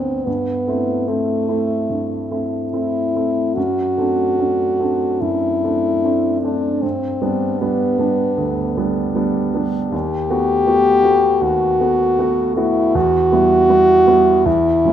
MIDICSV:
0, 0, Header, 1, 3, 480
1, 0, Start_track
1, 0, Key_signature, 1, "major"
1, 0, Tempo, 824176
1, 156, Time_signature, 4, 2, 24, 8
1, 3518, Tempo, 792602
1, 3998, Tempo, 779221
1, 5438, Tempo, 749064
1, 5927, Key_signature, 1, "minor"
1, 6878, Tempo, 764331
1, 9082, End_track
2, 0, Start_track
2, 0, Title_t, "French horn"
2, 0, Program_c, 0, 60
2, 0, Note_on_c, 0, 60, 47
2, 155, Note_on_c, 0, 59, 57
2, 163, Note_off_c, 0, 60, 0
2, 632, Note_on_c, 0, 57, 49
2, 641, Note_off_c, 0, 59, 0
2, 1424, Note_off_c, 0, 57, 0
2, 1586, Note_on_c, 0, 64, 58
2, 2067, Note_on_c, 0, 66, 67
2, 2075, Note_off_c, 0, 64, 0
2, 3036, Note_on_c, 0, 64, 67
2, 3045, Note_off_c, 0, 66, 0
2, 3746, Note_off_c, 0, 64, 0
2, 3750, Note_on_c, 0, 62, 56
2, 3990, Note_on_c, 0, 60, 61
2, 3999, Note_off_c, 0, 62, 0
2, 4464, Note_on_c, 0, 59, 62
2, 4474, Note_off_c, 0, 60, 0
2, 5431, Note_off_c, 0, 59, 0
2, 5914, Note_on_c, 0, 67, 96
2, 6883, Note_on_c, 0, 66, 73
2, 6892, Note_off_c, 0, 67, 0
2, 7601, Note_off_c, 0, 66, 0
2, 7605, Note_on_c, 0, 64, 73
2, 7847, Note_on_c, 0, 66, 99
2, 7857, Note_off_c, 0, 64, 0
2, 8790, Note_on_c, 0, 64, 85
2, 8799, Note_off_c, 0, 66, 0
2, 9082, Note_off_c, 0, 64, 0
2, 9082, End_track
3, 0, Start_track
3, 0, Title_t, "Grand piano"
3, 0, Program_c, 1, 0
3, 0, Control_c, 1, 64, 127
3, 0, Note_on_c, 1, 38, 33
3, 0, Note_on_c, 1, 59, 28
3, 0, Note_on_c, 1, 62, 29
3, 131, Note_off_c, 1, 59, 0
3, 131, Note_off_c, 1, 62, 0
3, 155, Note_on_c, 1, 43, 37
3, 167, Control_c, 1, 64, 0
3, 171, Note_off_c, 1, 38, 0
3, 255, Control_c, 1, 64, 127
3, 388, Note_off_c, 1, 43, 0
3, 394, Note_on_c, 1, 57, 27
3, 395, Note_on_c, 1, 64, 32
3, 396, Note_on_c, 1, 60, 30
3, 611, Note_off_c, 1, 57, 0
3, 612, Note_off_c, 1, 60, 0
3, 612, Note_off_c, 1, 64, 0
3, 625, Note_on_c, 1, 57, 30
3, 629, Note_on_c, 1, 60, 33
3, 629, Note_on_c, 1, 64, 35
3, 844, Note_off_c, 1, 57, 0
3, 846, Note_off_c, 1, 60, 0
3, 846, Note_off_c, 1, 64, 0
3, 864, Note_on_c, 1, 57, 29
3, 867, Note_on_c, 1, 60, 28
3, 867, Note_on_c, 1, 64, 33
3, 1082, Note_off_c, 1, 57, 0
3, 1083, Note_off_c, 1, 60, 0
3, 1083, Note_off_c, 1, 64, 0
3, 1106, Note_on_c, 1, 43, 31
3, 1340, Note_off_c, 1, 43, 0
3, 1346, Note_on_c, 1, 57, 27
3, 1349, Note_on_c, 1, 60, 27
3, 1351, Note_on_c, 1, 64, 30
3, 1567, Note_off_c, 1, 57, 0
3, 1568, Note_off_c, 1, 60, 0
3, 1569, Note_off_c, 1, 64, 0
3, 1588, Note_on_c, 1, 57, 28
3, 1593, Note_on_c, 1, 60, 29
3, 1594, Note_on_c, 1, 64, 31
3, 1810, Note_off_c, 1, 57, 0
3, 1812, Note_off_c, 1, 60, 0
3, 1813, Note_off_c, 1, 64, 0
3, 1836, Note_on_c, 1, 57, 29
3, 1843, Note_on_c, 1, 64, 30
3, 1844, Note_on_c, 1, 60, 30
3, 2054, Note_off_c, 1, 57, 0
3, 2058, Note_off_c, 1, 60, 0
3, 2058, Note_off_c, 1, 64, 0
3, 2079, Note_on_c, 1, 42, 39
3, 2087, Control_c, 1, 64, 0
3, 2192, Control_c, 1, 64, 127
3, 2310, Note_off_c, 1, 42, 0
3, 2315, Note_on_c, 1, 57, 31
3, 2319, Note_on_c, 1, 62, 32
3, 2320, Note_on_c, 1, 60, 30
3, 2530, Note_off_c, 1, 57, 0
3, 2532, Note_off_c, 1, 60, 0
3, 2532, Note_off_c, 1, 62, 0
3, 2556, Note_on_c, 1, 57, 34
3, 2556, Note_on_c, 1, 60, 32
3, 2557, Note_on_c, 1, 62, 34
3, 2772, Note_off_c, 1, 57, 0
3, 2772, Note_off_c, 1, 60, 0
3, 2773, Note_off_c, 1, 62, 0
3, 2790, Note_on_c, 1, 57, 31
3, 2795, Note_on_c, 1, 60, 31
3, 2796, Note_on_c, 1, 62, 32
3, 3013, Note_off_c, 1, 57, 0
3, 3016, Note_off_c, 1, 60, 0
3, 3016, Note_off_c, 1, 62, 0
3, 3037, Note_on_c, 1, 42, 36
3, 3272, Note_off_c, 1, 42, 0
3, 3285, Note_on_c, 1, 57, 29
3, 3285, Note_on_c, 1, 60, 28
3, 3286, Note_on_c, 1, 62, 33
3, 3496, Note_off_c, 1, 57, 0
3, 3496, Note_off_c, 1, 60, 0
3, 3496, Note_off_c, 1, 62, 0
3, 3516, Note_on_c, 1, 57, 32
3, 3518, Note_on_c, 1, 60, 34
3, 3521, Note_on_c, 1, 62, 32
3, 3734, Note_off_c, 1, 57, 0
3, 3735, Note_off_c, 1, 60, 0
3, 3737, Note_off_c, 1, 62, 0
3, 3760, Note_on_c, 1, 57, 32
3, 3761, Note_on_c, 1, 60, 30
3, 3763, Note_on_c, 1, 62, 32
3, 3974, Note_off_c, 1, 57, 0
3, 3975, Note_off_c, 1, 60, 0
3, 3976, Note_off_c, 1, 62, 0
3, 3994, Note_on_c, 1, 43, 38
3, 4009, Control_c, 1, 64, 0
3, 4109, Control_c, 1, 64, 127
3, 4229, Note_off_c, 1, 43, 0
3, 4234, Note_on_c, 1, 55, 33
3, 4234, Note_on_c, 1, 59, 32
3, 4237, Note_on_c, 1, 62, 38
3, 4452, Note_off_c, 1, 55, 0
3, 4452, Note_off_c, 1, 59, 0
3, 4453, Note_off_c, 1, 62, 0
3, 4480, Note_on_c, 1, 55, 35
3, 4480, Note_on_c, 1, 59, 39
3, 4481, Note_on_c, 1, 62, 36
3, 4694, Note_off_c, 1, 55, 0
3, 4695, Note_off_c, 1, 59, 0
3, 4695, Note_off_c, 1, 62, 0
3, 4710, Note_on_c, 1, 59, 32
3, 4711, Note_on_c, 1, 55, 32
3, 4716, Note_on_c, 1, 62, 38
3, 4930, Note_off_c, 1, 55, 0
3, 4930, Note_off_c, 1, 59, 0
3, 4933, Note_off_c, 1, 62, 0
3, 4947, Note_on_c, 1, 38, 38
3, 5186, Note_off_c, 1, 38, 0
3, 5194, Note_on_c, 1, 55, 35
3, 5194, Note_on_c, 1, 59, 33
3, 5194, Note_on_c, 1, 62, 34
3, 5410, Note_off_c, 1, 59, 0
3, 5411, Note_off_c, 1, 55, 0
3, 5411, Note_off_c, 1, 62, 0
3, 5426, Note_on_c, 1, 55, 39
3, 5427, Note_on_c, 1, 59, 37
3, 5430, Note_on_c, 1, 62, 39
3, 5651, Note_off_c, 1, 55, 0
3, 5652, Note_off_c, 1, 59, 0
3, 5654, Note_off_c, 1, 62, 0
3, 5675, Note_on_c, 1, 55, 34
3, 5678, Note_on_c, 1, 59, 31
3, 5679, Note_on_c, 1, 62, 41
3, 5899, Note_off_c, 1, 55, 0
3, 5900, Note_off_c, 1, 59, 0
3, 5901, Note_off_c, 1, 62, 0
3, 5918, Note_on_c, 1, 39, 48
3, 5937, Control_c, 1, 64, 0
3, 6045, Control_c, 1, 64, 127
3, 6156, Note_off_c, 1, 39, 0
3, 6162, Note_on_c, 1, 57, 35
3, 6164, Note_on_c, 1, 59, 39
3, 6164, Note_on_c, 1, 66, 42
3, 6376, Note_off_c, 1, 57, 0
3, 6377, Note_off_c, 1, 59, 0
3, 6377, Note_off_c, 1, 66, 0
3, 6397, Note_on_c, 1, 59, 39
3, 6400, Note_on_c, 1, 57, 43
3, 6402, Note_on_c, 1, 66, 46
3, 6611, Note_off_c, 1, 59, 0
3, 6613, Note_off_c, 1, 57, 0
3, 6614, Note_off_c, 1, 66, 0
3, 6628, Note_on_c, 1, 57, 37
3, 6633, Note_on_c, 1, 59, 36
3, 6636, Note_on_c, 1, 66, 42
3, 6849, Note_off_c, 1, 57, 0
3, 6852, Note_off_c, 1, 59, 0
3, 6854, Note_off_c, 1, 66, 0
3, 6875, Note_on_c, 1, 39, 45
3, 7109, Note_off_c, 1, 39, 0
3, 7117, Note_on_c, 1, 57, 36
3, 7121, Note_on_c, 1, 66, 38
3, 7123, Note_on_c, 1, 59, 36
3, 7335, Note_off_c, 1, 57, 0
3, 7337, Note_off_c, 1, 66, 0
3, 7338, Note_off_c, 1, 59, 0
3, 7362, Note_on_c, 1, 57, 42
3, 7362, Note_on_c, 1, 59, 41
3, 7364, Note_on_c, 1, 66, 47
3, 7578, Note_off_c, 1, 57, 0
3, 7578, Note_off_c, 1, 59, 0
3, 7579, Note_off_c, 1, 66, 0
3, 7595, Note_on_c, 1, 57, 39
3, 7601, Note_on_c, 1, 59, 39
3, 7602, Note_on_c, 1, 66, 46
3, 7814, Note_off_c, 1, 57, 0
3, 7817, Note_off_c, 1, 59, 0
3, 7817, Note_off_c, 1, 66, 0
3, 7839, Note_on_c, 1, 40, 53
3, 7852, Control_c, 1, 64, 0
3, 7959, Control_c, 1, 64, 127
3, 8068, Note_off_c, 1, 40, 0
3, 8073, Note_on_c, 1, 59, 42
3, 8074, Note_on_c, 1, 55, 40
3, 8079, Note_on_c, 1, 64, 42
3, 8284, Note_off_c, 1, 55, 0
3, 8284, Note_off_c, 1, 59, 0
3, 8287, Note_off_c, 1, 64, 0
3, 8305, Note_on_c, 1, 55, 41
3, 8308, Note_on_c, 1, 59, 42
3, 8311, Note_on_c, 1, 64, 49
3, 8520, Note_off_c, 1, 55, 0
3, 8522, Note_off_c, 1, 59, 0
3, 8523, Note_off_c, 1, 64, 0
3, 8544, Note_on_c, 1, 55, 43
3, 8545, Note_on_c, 1, 59, 41
3, 8546, Note_on_c, 1, 64, 48
3, 8765, Note_off_c, 1, 55, 0
3, 8766, Note_off_c, 1, 59, 0
3, 8767, Note_off_c, 1, 64, 0
3, 8786, Note_on_c, 1, 40, 51
3, 8802, Control_c, 1, 64, 0
3, 8915, Control_c, 1, 64, 127
3, 9027, Note_off_c, 1, 40, 0
3, 9033, Note_on_c, 1, 54, 34
3, 9033, Note_on_c, 1, 58, 37
3, 9036, Note_on_c, 1, 61, 42
3, 9082, Note_off_c, 1, 54, 0
3, 9082, Note_off_c, 1, 58, 0
3, 9082, Note_off_c, 1, 61, 0
3, 9082, End_track
0, 0, End_of_file